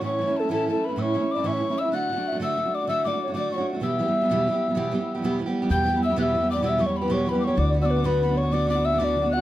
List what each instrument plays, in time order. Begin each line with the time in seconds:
0.01 steel-string acoustic guitar A2 E3 A3 C#4 E4, tin whistle C#6
0.06 flute C#5
0.18 steel-string acoustic guitar E3 A3 C#4 E4
0.27 steel-string acoustic guitar A3 C#4 E4
0.37 flute A4, tin whistle A5
0.41 steel-string acoustic guitar A3 C#4 E4
0.49 steel-string acoustic guitar A2 E3 A3 C#4 E4, flute A4, tin whistle A5
0.66 steel-string acoustic guitar E3 A3 C#4, tin whistle A5
0.70 steel-string acoustic guitar E4, flute A4
0.75 steel-string acoustic guitar A3 C#4
0.84 flute B4, tin whistle B5
0.89 steel-string acoustic guitar A3 C#4 E4
0.96 steel-string acoustic guitar A2 E3 A3 C#4 E4, tin whistle E6
1.01 flute C#5, tin whistle C#6
1.14 steel-string acoustic guitar E3 A3 C#4 E4
1.20 steel-string acoustic guitar A3 C#4 E4
1.31 flute D5, tin whistle D6
1.36 steel-string acoustic guitar A3 C#4 E4
1.44 steel-string acoustic guitar A2 E3 A3 C#4 E4, tin whistle C#6
1.48 flute E5
1.53 flute C#5
1.61 steel-string acoustic guitar E3 A3 E4
1.70 steel-string acoustic guitar A3 C#4 E4
1.79 flute E5, tin whistle E6
1.85 steel-string acoustic guitar A3 C#4 E4
1.92 steel-string acoustic guitar D3 A3 D4 F#4, flute F#5, tin whistle F#6
2.09 steel-string acoustic guitar D3 A3 D4 F#4
2.16 steel-string acoustic guitar A3 D4 F#4
2.28 flute E5
2.32 steel-string acoustic guitar D4 F#4
2.36 steel-string acoustic guitar D3 A3
2.41 steel-string acoustic guitar A3 D4 F#4, flute E5, tin whistle E6
2.57 steel-string acoustic guitar D3 A3 D4 F#4
2.65 steel-string acoustic guitar A3 D4 F#4
2.74 flute D5, tin whistle D6
2.82 steel-string acoustic guitar A3 D4 F#4
2.87 steel-string acoustic guitar D3 A3 D4 F#4, flute E5, tin whistle E6
3.04 steel-string acoustic guitar D3 A3 D4 F#4, flute D5, tin whistle D6
3.13 steel-string acoustic guitar A3 D4 F#4
3.23 flute C#5
3.28 steel-string acoustic guitar D4 F#4
3.32 steel-string acoustic guitar D3 A3, tin whistle D6
3.36 steel-string acoustic guitar D4 F#4, flute D5
3.51 steel-string acoustic guitar D3 A3 D4 F#4, tin whistle C#6
3.55 steel-string acoustic guitar F#4, flute C#5
3.60 steel-string acoustic guitar A3 D4
3.73 steel-string acoustic guitar A3 D4 F#4
3.80 steel-string acoustic guitar E2 B2 E3 G3 B3 G4, tin whistle E6
3.85 flute E5
3.99 steel-string acoustic guitar E3 G3 B3 G4
4.05 steel-string acoustic guitar E3 G3 B3 G4
4.22 steel-string acoustic guitar E3 G3 B3 G4
4.29 steel-string acoustic guitar E2 B2 E3 G3 B3 G4
4.46 steel-string acoustic guitar E3 G3 B3 G4
4.52 steel-string acoustic guitar G3 B3 G4
4.57 steel-string acoustic guitar E3
4.68 steel-string acoustic guitar E3 G3 B3 G4
4.74 steel-string acoustic guitar E2 B2 E3 G3 B3 G4
4.91 steel-string acoustic guitar E3 G3 B3 G4
4.98 steel-string acoustic guitar E3 G3 B3 G4
5.15 steel-string acoustic guitar E3 G3 B3 G4
5.22 steel-string acoustic guitar E2 B2 E3 G3 B3 G4
5.39 steel-string acoustic guitar E3 G3 B3 G4
5.46 steel-string acoustic guitar E3 G3 B3 G4
5.62 steel-string acoustic guitar E3 G3 B3 G4
5.69 steel-string acoustic guitar E2 B2 E3 G3 B3 G4, upright bass E2, flute G5, tin whistle G6
5.84 steel-string acoustic guitar E3 G3 B3 G4
5.94 steel-string acoustic guitar G3 B3 G4
5.98 steel-string acoustic guitar E3
6.03 flute E5, tin whistle E6
6.10 steel-string acoustic guitar G3 B3 G4
6.14 steel-string acoustic guitar E2 B2 E3 G3 B3 G4
6.19 flute E5, tin whistle E6 F#6
6.34 steel-string acoustic guitar E3 G3 B3 G4
6.40 steel-string acoustic guitar E3 G3 B3 G4
6.51 flute D5, tin whistle D6
6.56 steel-string acoustic guitar G3 B3 G4
6.60 steel-string acoustic guitar E2 B2 E3 G3 G4
6.64 steel-string acoustic guitar B3, tin whistle E6
6.69 flute E5
6.78 steel-string acoustic guitar E3 G3 B3 G4, tin whistle C#6
6.85 steel-string acoustic guitar E3 G3 B3 G4, flute C#5
6.97 tin whistle B5
7.01 steel-string acoustic guitar E3 G3 B3 G4, flute B4
7.08 steel-string acoustic guitar E2 B2 E3 G3 B3 G4, tin whistle C#6
7.14 flute C#5
7.26 steel-string acoustic guitar E3 G3 B3 G4, tin whistle B5
7.30 steel-string acoustic guitar B3 G4, flute B4
7.35 steel-string acoustic guitar E3 G3
7.40 tin whistle D6
7.44 steel-string acoustic guitar B3 G4, flute C#5, tin whistle C#6
7.50 steel-string acoustic guitar E3 G3
7.55 upright bass D2, steel-string acoustic guitar D3 B3 D4 F#4, tin whistle D6
7.59 flute D5
7.69 steel-string acoustic guitar D3, flute D5
7.74 steel-string acoustic guitar B3 D4 F#4
7.81 steel-string acoustic guitar B3 D4 F#4, flute D5, tin whistle E6
7.86 tin whistle D6
7.91 flute B4
7.96 steel-string acoustic guitar B3 D4 F#4
8.04 steel-string acoustic guitar D3 B3 D4 F#4, flute B4, tin whistle B5
8.21 steel-string acoustic guitar D3 B3 D4 F#4, tin whistle B5
8.29 steel-string acoustic guitar B3 D4 F#4
8.37 flute C#5, tin whistle C#6
8.43 steel-string acoustic guitar D4 F#4
8.47 steel-string acoustic guitar D3 B3
8.52 steel-string acoustic guitar B3 D4 F#4, flute D5, tin whistle D6
8.67 steel-string acoustic guitar D3 B3 D4, tin whistle D6
8.71 steel-string acoustic guitar F#4
8.75 steel-string acoustic guitar B3 D4 F#4
8.85 flute E5, tin whistle E6
8.92 steel-string acoustic guitar B3 D4 F#4
8.99 steel-string acoustic guitar D3 B3 D4 F#4, flute E5, tin whistle D6
9.04 flute D5
9.16 steel-string acoustic guitar D3 B3 D4 F#4
9.22 steel-string acoustic guitar B3 D4 F#4
9.31 flute F#5, tin whistle F#6
9.37 steel-string acoustic guitar F#4